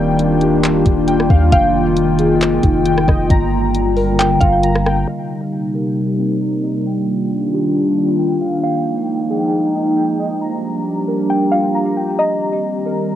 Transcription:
0.00 0.82 D#1 loud
0.00 1.49 D#3 medium
0.00 1.49 G3 medium
0.00 5.04 A#3 medium
0.00 1.51 D4 medium
0.00 5.04 F4 medium
0.00 1.06 G5 loud
0.19 closed hi-hat medium
0.41 1.53 G4 medium
0.41 closed hi-hat medium
0.64 clap loud
0.64 closed hi-hat medium
0.86 1.28 D#1 loud
0.86 1.52 D4 medium
0.86 kick loud
0.86 closed hi-hat medium
1.07 1.51 G5 loud
1.07 closed hi-hat medium
1.20 cross-stick loud
1.30 1.51 D#2 loud
1.30 1.52 F5 medium
1.30 kick loud
1.52 2.59 F1 loud
1.52 3.28 D#3 medium
1.52 3.28 G#3 medium
1.52 2.82 F5 loud
1.52 5.04 G5 medium
1.52 2.84 G5 loud
1.52 kick loud
1.52 closed hi-hat medium
1.97 closed hi-hat medium
2.19 3.30 G#4 medium
2.19 closed hi-hat medium
2.41 clap loud
2.41 closed hi-hat medium
2.63 3.06 F1 loud
2.63 3.30 D#4 medium
2.63 kick loud
2.63 closed hi-hat medium
2.86 3.30 G5 loud
2.86 closed hi-hat medium
2.98 cross-stick loud
3.08 3.29 F1 loud
3.08 3.30 D#5 medium
3.08 kick loud
3.08 cross-stick medium
3.30 4.37 G1 loud
3.30 5.06 D3 medium
3.30 5.06 G3 medium
3.30 4.62 A#5 loud
3.30 kick loud
3.30 closed hi-hat medium
3.75 closed hi-hat medium
3.96 5.08 A#4 medium
3.96 open hi-hat soft
4.19 4.40 G5 medium
4.19 clap loud
4.19 closed hi-hat medium
4.41 5.05 G1 loud
4.41 5.08 F4 medium
4.41 4.62 F5 medium
4.41 kick medium
4.41 closed hi-hat medium
4.63 5.07 A#5 loud
4.63 closed hi-hat medium
4.75 cross-stick medium
4.85 5.08 G5 medium
4.85 cross-stick loud
5.08 6.84 C3 medium
5.08 8.60 G3 medium
5.08 13.15 A#3 medium
5.08 6.84 D#4 medium
5.08 6.84 G4 medium
5.08 6.37 D#5 medium
5.74 6.86 A#4 medium
6.18 6.85 C4 medium
6.41 6.86 A#5 medium
6.63 6.86 D#5 medium
6.86 8.62 D#3 medium
6.86 8.62 D4 medium
6.86 8.62 F4 medium
6.86 8.17 G5 medium
7.53 8.64 G4 medium
7.97 8.63 D4 medium
8.19 8.63 G5 medium
8.41 8.63 F5 medium
8.63 12.15 F3 medium
8.63 10.39 G#3 medium
8.63 10.40 D#4 medium
8.63 9.93 F5 loud
8.63 10.39 G5 medium
8.63 9.96 G5 loud
9.30 10.41 G#4 medium
9.75 10.41 D#4 medium
9.97 10.41 G5 medium
10.19 10.41 D#5 medium
10.41 12.17 G3 medium
10.41 12.17 D4 medium
10.41 13.15 G4 medium
10.41 11.73 A#5 loud
11.08 12.19 A#4 medium
11.30 11.51 G5 medium
11.52 12.19 F4 medium
11.52 11.73 F5 medium
11.75 12.18 A#5 loud
11.97 12.19 G5 medium
12.19 13.15 D#3 medium
12.19 13.15 G3 medium
12.19 13.15 C4 medium
12.19 13.15 D#5 medium
12.19 13.15 A#5 loud
12.86 13.15 A#4 medium

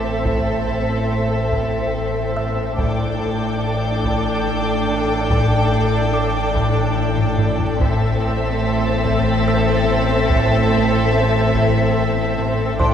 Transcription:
0.00 2.75 A1 soft
0.00 2.76 A1 medium
0.00 0.25 A2 soft
0.00 2.75 A2 soft
0.00 1.09 A3 soft
0.00 2.76 C4 soft
0.00 2.75 A4 soft
0.00 2.76 A4 medium
0.00 2.75 C5 medium
0.00 2.75 E5 soft
0.00 2.75 E5 medium
0.00 1.91 D6 soft
0.25 0.67 A2 medium
0.25 taiko medium
0.68 1.51 A2 soft
1.10 1.93 A3 soft
1.52 2.36 A2 medium
1.52 taiko medium
1.95 3.61 A3 soft
2.36 2.78 A2 soft
2.36 4.85 E5 soft
2.36 4.85 E6 soft
2.78 7.76 A1 medium
2.78 7.77 A1 medium
2.78 3.19 A2 medium
2.78 7.77 A2 medium
2.78 7.76 D4 medium
2.78 7.76 A4 medium
2.78 7.80 D5 medium
2.78 7.76 G5 medium
2.78 7.80 G5 medium
2.78 7.35 D6 soft
2.78 6.51 G6 soft
2.78 taiko medium
3.20 4.03 A2 soft
3.62 4.45 A3 soft
4.04 4.88 A2 medium
4.04 taiko medium
4.46 6.11 A3 soft
4.89 5.29 A2 soft
5.30 5.71 A2 medium
5.30 taiko medium
5.72 6.53 A2 medium
6.12 6.94 A3 medium
6.12 8.59 D6 soft
6.54 7.37 A2 medium
6.54 taiko medium
6.96 8.62 A3 medium
7.18 taiko low-mid medium
7.38 7.79 A2 medium
7.38 taiko low-mid medium
7.59 taiko low medium
7.80 12.75 A1 medium
7.80 12.76 A1 medium
7.80 8.20 A2 medium
7.80 12.76 A2 medium
7.80 12.75 C4 medium
7.80 12.76 A4 medium
7.80 12.80 C5 medium
7.80 12.80 E5 medium
7.80 12.76 E5 medium
7.80 12.34 E6 medium
7.80 taiko medium
8.21 9.03 A2 medium
8.63 9.45 A3 medium
8.63 11.43 A6 medium
9.05 9.86 A2 medium
9.05 taiko medium
9.47 11.12 A3 medium
9.47 11.93 E6 medium
9.88 10.28 A2 medium
10.29 10.70 A2 medium
10.29 taiko medium
10.72 11.53 A2 soft
11.13 11.94 A3 medium
11.43 12.34 G#6 medium
11.54 12.37 A2 medium
11.54 taiko medium
11.96 12.94 A3 soft
12.38 12.79 A2 soft
12.78 12.94 A1 medium
12.78 12.94 A2 medium
12.78 12.94 D4 medium
12.78 12.94 A4 medium
12.78 12.94 C5 soft
12.78 12.94 D5 medium
12.78 12.94 G5 medium
12.78 12.94 C6 soft
12.78 12.94 D6 soft
12.78 taiko medium

